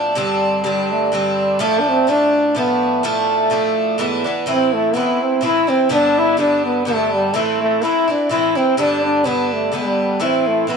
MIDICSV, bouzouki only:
0, 0, Header, 1, 2, 480
1, 0, Start_track
1, 0, Tempo, 478088
1, 168, Time_signature, 3, 2, 24, 8
1, 10811, End_track
2, 0, Start_track
2, 0, Title_t, "Bouzouki"
2, 0, Program_c, 0, 25
2, 0, Note_on_c, 0, 45, 55
2, 0, Note_on_c, 0, 53, 55
2, 0, Note_on_c, 0, 57, 68
2, 0, Note_on_c, 0, 62, 76
2, 151, Note_off_c, 0, 45, 0
2, 155, Note_on_c, 0, 43, 75
2, 159, Note_off_c, 0, 53, 0
2, 163, Note_on_c, 0, 50, 73
2, 166, Note_off_c, 0, 57, 0
2, 170, Note_on_c, 0, 60, 75
2, 174, Note_off_c, 0, 62, 0
2, 178, Note_on_c, 0, 62, 81
2, 629, Note_off_c, 0, 43, 0
2, 641, Note_on_c, 0, 43, 59
2, 642, Note_off_c, 0, 50, 0
2, 646, Note_on_c, 0, 50, 64
2, 649, Note_off_c, 0, 60, 0
2, 662, Note_on_c, 0, 60, 61
2, 664, Note_off_c, 0, 62, 0
2, 668, Note_on_c, 0, 62, 68
2, 1110, Note_off_c, 0, 43, 0
2, 1122, Note_on_c, 0, 43, 57
2, 1128, Note_off_c, 0, 50, 0
2, 1130, Note_off_c, 0, 60, 0
2, 1132, Note_on_c, 0, 50, 60
2, 1142, Note_on_c, 0, 60, 62
2, 1148, Note_off_c, 0, 62, 0
2, 1152, Note_on_c, 0, 62, 69
2, 1593, Note_off_c, 0, 43, 0
2, 1597, Note_on_c, 0, 45, 73
2, 1604, Note_off_c, 0, 50, 0
2, 1608, Note_off_c, 0, 60, 0
2, 1608, Note_on_c, 0, 53, 80
2, 1612, Note_on_c, 0, 57, 82
2, 1614, Note_off_c, 0, 62, 0
2, 1618, Note_on_c, 0, 62, 80
2, 2066, Note_off_c, 0, 45, 0
2, 2077, Note_off_c, 0, 53, 0
2, 2078, Note_on_c, 0, 45, 50
2, 2084, Note_off_c, 0, 57, 0
2, 2089, Note_on_c, 0, 53, 63
2, 2096, Note_on_c, 0, 57, 58
2, 2103, Note_off_c, 0, 62, 0
2, 2107, Note_on_c, 0, 62, 60
2, 2545, Note_off_c, 0, 45, 0
2, 2557, Note_on_c, 0, 45, 58
2, 2558, Note_off_c, 0, 53, 0
2, 2565, Note_off_c, 0, 57, 0
2, 2570, Note_on_c, 0, 53, 62
2, 2577, Note_on_c, 0, 57, 70
2, 2578, Note_off_c, 0, 62, 0
2, 2588, Note_on_c, 0, 62, 59
2, 3032, Note_off_c, 0, 45, 0
2, 3042, Note_off_c, 0, 53, 0
2, 3044, Note_on_c, 0, 45, 69
2, 3049, Note_off_c, 0, 57, 0
2, 3049, Note_off_c, 0, 62, 0
2, 3054, Note_on_c, 0, 53, 73
2, 3061, Note_on_c, 0, 57, 78
2, 3061, Note_on_c, 0, 62, 87
2, 3501, Note_off_c, 0, 45, 0
2, 3511, Note_off_c, 0, 53, 0
2, 3513, Note_on_c, 0, 45, 51
2, 3522, Note_off_c, 0, 57, 0
2, 3523, Note_on_c, 0, 53, 62
2, 3529, Note_off_c, 0, 62, 0
2, 3534, Note_on_c, 0, 57, 66
2, 3542, Note_on_c, 0, 62, 59
2, 3992, Note_off_c, 0, 45, 0
2, 3996, Note_on_c, 0, 44, 68
2, 4002, Note_off_c, 0, 53, 0
2, 4006, Note_on_c, 0, 52, 79
2, 4011, Note_off_c, 0, 57, 0
2, 4015, Note_off_c, 0, 62, 0
2, 4015, Note_on_c, 0, 59, 68
2, 4025, Note_on_c, 0, 62, 78
2, 4247, Note_off_c, 0, 62, 0
2, 4259, Note_on_c, 0, 62, 55
2, 4263, Note_off_c, 0, 59, 0
2, 4264, Note_off_c, 0, 44, 0
2, 4269, Note_off_c, 0, 52, 0
2, 4275, Note_on_c, 0, 59, 49
2, 4288, Note_on_c, 0, 52, 50
2, 4474, Note_off_c, 0, 52, 0
2, 4478, Note_on_c, 0, 45, 65
2, 4483, Note_off_c, 0, 62, 0
2, 4486, Note_on_c, 0, 52, 73
2, 4489, Note_off_c, 0, 59, 0
2, 4493, Note_on_c, 0, 60, 73
2, 4500, Note_on_c, 0, 64, 69
2, 4944, Note_off_c, 0, 45, 0
2, 4956, Note_off_c, 0, 52, 0
2, 4956, Note_on_c, 0, 45, 58
2, 4965, Note_off_c, 0, 60, 0
2, 4968, Note_on_c, 0, 52, 58
2, 4974, Note_off_c, 0, 64, 0
2, 4977, Note_on_c, 0, 60, 62
2, 4985, Note_on_c, 0, 64, 59
2, 5417, Note_off_c, 0, 45, 0
2, 5430, Note_on_c, 0, 45, 63
2, 5432, Note_off_c, 0, 52, 0
2, 5439, Note_off_c, 0, 60, 0
2, 5444, Note_on_c, 0, 52, 62
2, 5448, Note_off_c, 0, 64, 0
2, 5451, Note_on_c, 0, 60, 68
2, 5460, Note_on_c, 0, 64, 61
2, 5681, Note_off_c, 0, 64, 0
2, 5693, Note_on_c, 0, 64, 40
2, 5694, Note_off_c, 0, 60, 0
2, 5701, Note_off_c, 0, 45, 0
2, 5707, Note_on_c, 0, 60, 50
2, 5708, Note_off_c, 0, 52, 0
2, 5720, Note_on_c, 0, 52, 38
2, 5916, Note_on_c, 0, 43, 72
2, 5917, Note_off_c, 0, 52, 0
2, 5920, Note_off_c, 0, 64, 0
2, 5921, Note_on_c, 0, 50, 77
2, 5925, Note_off_c, 0, 60, 0
2, 5929, Note_on_c, 0, 59, 84
2, 5939, Note_on_c, 0, 62, 79
2, 6384, Note_off_c, 0, 43, 0
2, 6394, Note_off_c, 0, 50, 0
2, 6396, Note_on_c, 0, 43, 59
2, 6403, Note_off_c, 0, 59, 0
2, 6406, Note_on_c, 0, 50, 62
2, 6413, Note_off_c, 0, 62, 0
2, 6415, Note_on_c, 0, 59, 62
2, 6428, Note_on_c, 0, 62, 56
2, 6868, Note_off_c, 0, 43, 0
2, 6880, Note_on_c, 0, 43, 57
2, 6881, Note_off_c, 0, 50, 0
2, 6888, Note_off_c, 0, 59, 0
2, 6893, Note_on_c, 0, 50, 65
2, 6898, Note_off_c, 0, 62, 0
2, 6900, Note_on_c, 0, 59, 66
2, 6910, Note_on_c, 0, 62, 74
2, 7363, Note_off_c, 0, 43, 0
2, 7367, Note_on_c, 0, 45, 78
2, 7371, Note_off_c, 0, 50, 0
2, 7374, Note_off_c, 0, 59, 0
2, 7375, Note_on_c, 0, 52, 79
2, 7379, Note_off_c, 0, 62, 0
2, 7381, Note_on_c, 0, 60, 78
2, 7387, Note_on_c, 0, 64, 72
2, 7836, Note_off_c, 0, 45, 0
2, 7848, Note_on_c, 0, 45, 57
2, 7849, Note_off_c, 0, 52, 0
2, 7855, Note_off_c, 0, 60, 0
2, 7858, Note_off_c, 0, 64, 0
2, 7861, Note_on_c, 0, 52, 59
2, 7872, Note_on_c, 0, 60, 58
2, 7880, Note_on_c, 0, 64, 65
2, 8097, Note_off_c, 0, 64, 0
2, 8109, Note_on_c, 0, 64, 42
2, 8111, Note_off_c, 0, 45, 0
2, 8113, Note_off_c, 0, 60, 0
2, 8117, Note_off_c, 0, 52, 0
2, 8125, Note_on_c, 0, 60, 37
2, 8136, Note_on_c, 0, 52, 38
2, 8327, Note_on_c, 0, 45, 62
2, 8328, Note_off_c, 0, 52, 0
2, 8328, Note_off_c, 0, 64, 0
2, 8333, Note_off_c, 0, 60, 0
2, 8340, Note_on_c, 0, 52, 63
2, 8345, Note_on_c, 0, 60, 69
2, 8355, Note_on_c, 0, 64, 68
2, 8576, Note_off_c, 0, 64, 0
2, 8588, Note_on_c, 0, 64, 44
2, 8590, Note_off_c, 0, 45, 0
2, 8594, Note_off_c, 0, 60, 0
2, 8596, Note_off_c, 0, 52, 0
2, 8606, Note_on_c, 0, 60, 42
2, 8617, Note_on_c, 0, 52, 40
2, 8807, Note_off_c, 0, 64, 0
2, 8808, Note_on_c, 0, 43, 72
2, 8811, Note_off_c, 0, 52, 0
2, 8815, Note_on_c, 0, 50, 89
2, 8817, Note_off_c, 0, 60, 0
2, 8826, Note_on_c, 0, 59, 75
2, 8828, Note_on_c, 0, 62, 75
2, 9267, Note_off_c, 0, 43, 0
2, 9278, Note_off_c, 0, 50, 0
2, 9279, Note_on_c, 0, 43, 56
2, 9286, Note_off_c, 0, 59, 0
2, 9290, Note_on_c, 0, 50, 59
2, 9294, Note_off_c, 0, 62, 0
2, 9299, Note_on_c, 0, 59, 53
2, 9306, Note_on_c, 0, 62, 67
2, 9744, Note_off_c, 0, 43, 0
2, 9753, Note_off_c, 0, 50, 0
2, 9756, Note_on_c, 0, 43, 60
2, 9761, Note_off_c, 0, 59, 0
2, 9765, Note_on_c, 0, 50, 58
2, 9773, Note_on_c, 0, 59, 61
2, 9774, Note_off_c, 0, 62, 0
2, 9786, Note_on_c, 0, 62, 59
2, 10234, Note_off_c, 0, 43, 0
2, 10238, Note_on_c, 0, 45, 68
2, 10241, Note_off_c, 0, 50, 0
2, 10245, Note_on_c, 0, 52, 68
2, 10246, Note_off_c, 0, 59, 0
2, 10250, Note_on_c, 0, 60, 76
2, 10253, Note_off_c, 0, 62, 0
2, 10257, Note_on_c, 0, 64, 64
2, 10702, Note_off_c, 0, 45, 0
2, 10712, Note_off_c, 0, 52, 0
2, 10714, Note_on_c, 0, 45, 53
2, 10723, Note_off_c, 0, 60, 0
2, 10724, Note_on_c, 0, 52, 55
2, 10733, Note_off_c, 0, 64, 0
2, 10735, Note_on_c, 0, 60, 58
2, 10743, Note_on_c, 0, 64, 62
2, 10811, Note_off_c, 0, 45, 0
2, 10811, Note_off_c, 0, 52, 0
2, 10811, Note_off_c, 0, 60, 0
2, 10811, Note_off_c, 0, 64, 0
2, 10811, End_track
0, 0, End_of_file